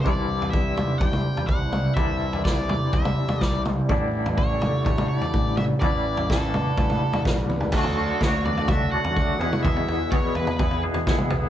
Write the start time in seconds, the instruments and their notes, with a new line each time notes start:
Already playing: harmonium D4
0.02 picked electric bass C2, clean electric guitar C3 E3, harmonium E4 G4 C5, lead electric guitar D5
0.06 clean electric guitar G3 D4 E4, kick, floor tom
0.42 floor tom
0.50 lead electric guitar E5, kick
0.77 floor tom, mid tom
0.98 picked electric bass C2, lead electric guitar G5, kick, floor tom
1.13 mid tom
1.37 floor tom
1.47 picked electric bass C2, lead electric guitar F#5, kick
1.73 mid tom
1.94 picked electric bass C2, clean electric guitar C3 E3 G3, lead electric guitar E5, kick, floor tom
1.98 clean electric guitar D4 E4
2.33 floor tom
2.44 lead electric guitar D5, kick, snare
2.69 floor tom, mid tom
2.93 picked electric bass C2, lead electric guitar E5, kick, floor tom
3.05 mid tom
3.28 floor tom, mid tom
3.41 picked electric bass C2, lead electric guitar D5, kick, snare
3.65 mid tom
3.89 picked electric bass A1, clean electric guitar A2 D3 G3 D4 E4, harmonium D4 A4, kick, floor tom
4.26 floor tom
4.38 lead electric guitar C#5, kick
4.62 floor tom, mid tom
4.85 picked electric bass A1, lead electric guitar C#5, kick, floor tom
4.98 mid tom
5.08 lead electric guitar C#5
5.19 lead electric guitar D5, floor tom
5.34 picked electric bass A1, kick
5.57 lead electric guitar E5, mid tom
5.80 picked electric bass A1, clean electric guitar A2 D3 G3 D4, harmonium B4, lead electric guitar D5, kick, floor tom
5.84 clean electric guitar E4
6.17 floor tom
6.30 lead electric guitar A4, kick, snare
6.54 floor tom, mid tom
6.78 picked electric bass A1, kick, floor tom
6.90 mid tom
7.13 floor tom, mid tom
7.25 picked electric bass B1, kick, snare
7.49 picked electric bass C#2, high tom
7.60 floor tom
7.72 picked electric bass D2, clean electric guitar D3 F#3 A3 D4 F#4, harmonium D4 F#4 A4 D5, lead electric guitar A4, kick, floor tom, crash
7.84 floor tom
7.97 clean electric guitar A3 D4 F#4
8.21 picked electric bass D2, clean electric guitar D3 F#3 A3 D4 F#4, lead electric guitar C#5, kick, snare
8.45 clean electric guitar A3 D4 F#4, lead electric guitar D5, floor tom
8.57 floor tom
8.68 clean electric guitar F#3 A3 D4 F#4, lead electric guitar E5, kick, floor tom, mid tom
8.91 clean electric guitar D3 F#3 A3 D4 F#4, lead electric guitar F#5
9.04 floor tom
9.17 picked electric bass D2, clean electric guitar F#3 A3 D4 F#4, kick
9.37 picked electric bass E2, clean electric guitar E3 B3 E4 G#4, harmonium E4 G#4 B4 E5, floor tom
9.42 clean electric guitar E2 B2
9.53 mid tom
9.63 picked electric bass E2, clean electric guitar E2 B2 E3 B3 E4, lead electric guitar E5, kick, floor tom
9.67 clean electric guitar G#4
9.76 floor tom
9.88 clean electric guitar E3 B3 E4 G#4, floor tom
10.11 clean electric guitar E2 B2 E3 B3 E4 G#4, picked electric bass E2, lead electric guitar C#5, kick
10.35 clean electric guitar B3 E4 G#4, lead electric guitar B4, floor tom
10.39 clean electric guitar E3
10.47 floor tom
10.59 clean electric guitar E3 B3 E4 G#4, kick, floor tom
10.71 floor tom
10.83 clean electric guitar E2 B2 E3 B3 E4 G#4
10.94 floor tom
11.07 clean electric guitar E3 B3 E4 G#4, picked electric bass E3, kick, snare
11.18 mid tom
11.30 picked electric bass B1, clean electric guitar E3 B3 E4 G#4, floor tom